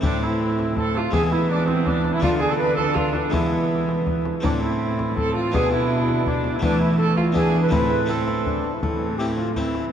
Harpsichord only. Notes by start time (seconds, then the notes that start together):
0.01 A2 A3 C4 E4
1.11 E3 G#3 B3 E4
2.20 D3 A3 D4 F4
3.30 E3 G#3 B3 E4
4.40 A2 A3 C4 E4
5.52 B2 B3 D4
6.59 E3 A3 B3 E4
7.32 B3 D4 E4
7.69 A2 A3 C4 E4
8.06 A3 C4 E4
8.83 A2
9.20 A3 C4 E4
9.56 A3 C4 E4